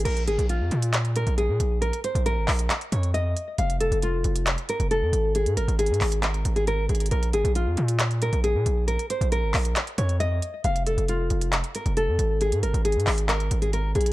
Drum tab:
CC |x-----------------------------------------------------------------------------------------------|------------------------------------------------------------------------------------------------|------------------------------------------------------------------------------------------------|------------------------------------------------------------------------------------------------|
HH |x-----x-----x-----x-----x-----------x-----x-----x-----x-----x-----x-----x-----------x-----------|x-----x-----x-----x-----x-----------o-----x-----x-----x-----x-----x-----x-----------x-----------|x-----x-----x-----x-----x-----------x-----x-----x-----x-----x-----x-----x-----------x-----------|x-----x-----x-----x-----x---x---x---o-----x-----x-----x-----x-----x-----x-----------x--x--x--x--|
CP |------------------------------------------------x-----------------------------------------------|------------------------------------x-----------x-----------------------------------------------|------------------------------------------------x-----------------------------------------------|------------------------------------x-----------x-----------------------------------------------|

CC |------------------------------------------------------------------------------------------------|------------------------------------------------------------------------------------------------|------------------------------------------------------------------------------------------------|------------------------------------------------------------------------------------------------|
HH |x-----x-----x-----x-----x-----------x-----x-----x-----x-----x-----x-----x-----------x-----------|x-----x-----x-----x-----x-----------o-----x-----x-----x-----x-----x-----x-----------x-----------|x-----x-----x-----x-----x-----------x-----x-----x-----x-----x-----x-----x-----------x-----------|x-----x-----x-----x-----x---x---x---o-----x-----x-----x-----x-----x-----x-----------x--x--x-----|
CP |------------------------------------------------x-----------------------------------------------|------------------------------------x-----------x-----------------------------------------------|------------------------------------------------x-----------------------------------------------|------------------------------------x-----------x-----------------------------------------------|